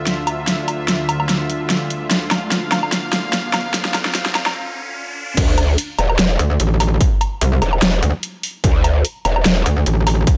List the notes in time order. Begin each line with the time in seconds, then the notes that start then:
Already playing: D2 D3 F4 E5, riser
0.07 snare, closed hi-hat
0.27 closed hi-hat, low woodblock
0.47 snare, closed hi-hat
0.68 closed hi-hat, low woodblock
0.88 snare, closed hi-hat
1.09 closed hi-hat, low woodblock
1.20 low woodblock
1.29 snare, closed hi-hat
1.50 closed hi-hat
1.70 snare, closed hi-hat
1.90 closed hi-hat
2.11 F5, snare, closed hi-hat
2.31 snare, closed hi-hat, low woodblock
2.52 snare, closed hi-hat
2.72 snare, closed hi-hat, low woodblock
2.83 low woodblock
2.92 snare, closed hi-hat
3.13 snare, closed hi-hat
3.33 snare, closed hi-hat
3.54 snare, closed hi-hat, low woodblock
3.74 snare, closed hi-hat
3.85 snare
3.94 snare, closed hi-hat, low woodblock
4.05 snare
4.15 snare, closed hi-hat
4.26 snare
4.35 snare, closed hi-hat, low woodblock
4.46 snare, low woodblock
5.37 D2, kick, closed hi-hat, crash
5.58 closed hi-hat, low woodblock
5.78 closed hi-hat
5.98 E1, closed hi-hat, low woodblock
6.10 low woodblock
6.19 E1, snare, closed hi-hat
6.39 D2, closed hi-hat
6.60 A1, closed hi-hat
6.80 open hi-hat, low woodblock
7.01 kick, closed hi-hat
7.21 closed hi-hat, low woodblock
7.41 C2, closed hi-hat
7.62 E1, closed hi-hat, low woodblock
7.73 low woodblock
7.82 E1, snare, closed hi-hat
8.03 D2, closed hi-hat
8.23 closed hi-hat
8.43 open hi-hat
8.64 D2, kick, closed hi-hat
8.84 closed hi-hat, low woodblock
9.05 closed hi-hat
9.25 E1, closed hi-hat, low woodblock
9.36 low woodblock
9.45 E1, snare, closed hi-hat
9.66 D2, closed hi-hat
9.86 A1, closed hi-hat
10.07 open hi-hat, low woodblock
10.27 kick, closed hi-hat